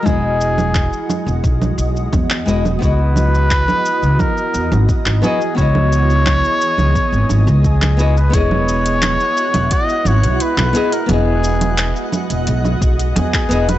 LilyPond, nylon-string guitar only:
\new Staff \with { instrumentName = "Nylon-string guitar" } { \time 4/4 \key e \major \tempo 4 = 87 <gis e' fis' dis''>2.~ <gis e' fis' dis''>8 <gis e' fis' dis''>16 r16 | <b e' fis' dis''>2.~ <b e' fis' dis''>8 <b e' fis' dis''>16 r16 | <b e' fis' dis''>2.~ <b e' fis' dis''>8 <b e' fis' dis''>16 r16 | <b e' gis' dis''>2.~ <b e' gis' dis''>8 <b e' gis' dis''>16 r16 |
<b e' gis' dis''>2.~ <b e' gis' dis''>8 <b e' gis' dis''>16 r16 | }